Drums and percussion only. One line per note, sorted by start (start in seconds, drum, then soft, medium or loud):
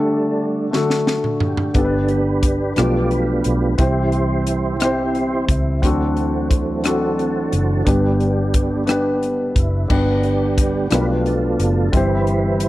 0.73 snare soft
0.90 snare soft
1.07 snare medium
1.24 mid tom medium
1.40 floor tom medium
1.57 floor tom medium
1.74 kick medium
1.74 closed hi-hat medium
2.08 closed hi-hat soft
2.43 kick medium
2.43 closed hi-hat medium
2.76 cross-stick medium
2.76 closed hi-hat medium
3.11 closed hi-hat soft
3.44 closed hi-hat soft
3.78 kick medium
3.78 closed hi-hat medium
4.12 closed hi-hat soft
4.47 closed hi-hat medium
4.80 cross-stick medium
4.80 closed hi-hat medium
5.15 closed hi-hat soft
5.49 kick medium
5.49 closed hi-hat soft
5.83 kick medium
5.83 closed hi-hat medium
6.17 closed hi-hat soft
6.51 kick medium
6.51 closed hi-hat medium
6.84 cross-stick medium
6.84 closed hi-hat medium
7.19 closed hi-hat soft
7.52 closed hi-hat soft
7.87 kick medium
7.87 closed hi-hat medium
8.20 closed hi-hat soft
8.54 kick medium
8.54 closed hi-hat medium
8.87 cross-stick medium
8.87 closed hi-hat medium
9.23 closed hi-hat soft
9.56 kick medium
9.56 closed hi-hat soft
9.90 kick medium
9.90 crash medium
10.23 closed hi-hat soft
10.58 kick medium
10.58 closed hi-hat medium
10.91 cross-stick medium
10.91 closed hi-hat medium
11.26 closed hi-hat soft
11.60 closed hi-hat soft
11.93 kick medium
11.93 closed hi-hat medium
12.27 closed hi-hat soft
12.60 closed hi-hat medium